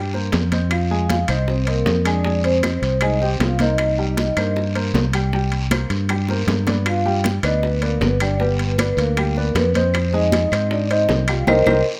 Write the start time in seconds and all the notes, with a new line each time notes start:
Already playing: G2 G3 G4 G5
0.13 A#3 A#4 C5, high bongo, high conga
0.32 F2, high bongo, low bongo, high conga, high timbale, low timbale, short guiro
0.52 C4 C5 D#5, high bongo, high conga, high timbale, short guiro
0.70 F4 F5, high bongo, high conga, high timbale, long guiro, claves
0.91 G#3 G#4 G#5, high conga
1.09 F4 F5, high bongo, high conga, high timbale, low timbale, short guiro
1.28 C2 C4 D#4 C5 D#5, high conga, high timbale, short guiro, claves
1.48 C4 C5, high bongo, high conga, long guiro
1.67 A#3 C4 A#4 C5 D#5, high conga, high timbale
1.86 F2, high bongo, low bongo, high conga, low timbale, short guiro
2.04 G#3 D4 G#4 D5 G#5, high timbale, short guiro, claves
2.24 G#3 G#4 G#5, high bongo, high conga, long guiro
2.44 C4 C5, high conga, high timbale
2.63 C4 C5 D#5, high bongo, high conga, high timbale, low timbale, short guiro, claves
2.82 C2, high bongo, high timbale, short guiro
3.01 G#3 D#4 G#4 D#5 G#5, high bongo, high conga, high timbale, long guiro, claves
3.21 C4 G4 C5 D#5 G5, high bongo, high conga
3.40 C2 F4 F5, high bongo, low bongo, high conga, high timbale, low timbale, short guiro
3.59 A#3 D#4 A#4 C5 D#5, high bongo, high conga, high timbale, short guiro
3.78 high bongo, high timbale, long guiro, claves
3.98 G3 G4 G5, high conga
4.17 high bongo, high conga, high timbale, low timbale, short guiro
4.37 G2 A#3 A#4 C5, high conga, high timbale, short guiro, claves
4.56 high bongo, high conga, long guiro
4.75 A#3 A#4 C5, high conga, high timbale
4.94 C2, high bongo, low bongo, high conga, low timbale, short guiro
5.13 G3 G4 G5, high conga, high timbale, short guiro, claves
5.32 G3 G4 G5, high bongo, high conga, long guiro
5.51 high conga, high timbale
5.71 A#3 A#4 C5, high bongo, high conga, high timbale, low timbale, short guiro, claves
5.90 G2, high bongo, high timbale, short guiro
6.09 G3 G4 G5, high bongo, high conga, high timbale, long guiro, claves
6.28 A#3 A#4 C5, high bongo, high conga
6.47 G2, low bongo, high conga, high timbale, low timbale, short guiro
6.67 B3 B4 D5, low bongo, high conga, high timbale, short guiro
6.85 F4 F5, high bongo, high timbale, long guiro, claves
7.05 G3 G4 G5, high conga
7.24 high bongo, high conga, high timbale, low timbale, short guiro
7.42 D2 B3 D#4 B4 D5 D#5, high conga, high timbale, short guiro, claves
7.62 B3 B4, high bongo, high conga, long guiro
7.81 A#3 B3 A#4 B4 D5, high conga, high timbale
8.01 G1 B3 B4, high bongo, low bongo, high conga, low timbale, short guiro
8.20 G3 D4 G4 D5 G5, high conga, high timbale, short guiro, claves
8.39 G3 B3 G4 B4 G5, high bongo, high conga, long guiro
8.59 high conga, high timbale
8.78 B3 B4 D5, high bongo, high conga, high timbale, low timbale, short guiro, claves
8.97 D2 A#3 A#4, high bongo, high timbale, short guiro
9.17 G3 G4 G5, high bongo, high conga, high timbale, long guiro, claves
9.36 B3 B4 D5, high bongo, high conga
9.55 F2 B3 B4, high bongo, low bongo, high conga, high timbale, low timbale, short guiro
9.74 C4 C5 D#5, high bongo, high conga, high timbale, short guiro
9.94 high bongo, high conga, high timbale, long guiro, claves
10.13 G#3 D#4 G#4 D#5 G#5, high conga
10.32 high bongo, high conga, high timbale, low timbale, short guiro
10.51 G#2 C4 C5 D#5, high conga, high timbale, short guiro, claves
10.70 D4 D5, high bongo, high conga, long guiro
10.90 C4 D#4 C5 D#5, high conga, high timbale
11.09 C2, high bongo, low bongo, high conga, low timbale, short guiro
11.28 G3 F4 G4 F5 G5, high conga, high timbale, short guiro, claves
11.47 C2 D#4 G4 A#4 C5 D#5, low bongo, high conga, high timbale, long guiro, claves
11.66 C2 D#4 G4 A#4 C5 D#5, low bongo, high conga, high timbale, long guiro, claves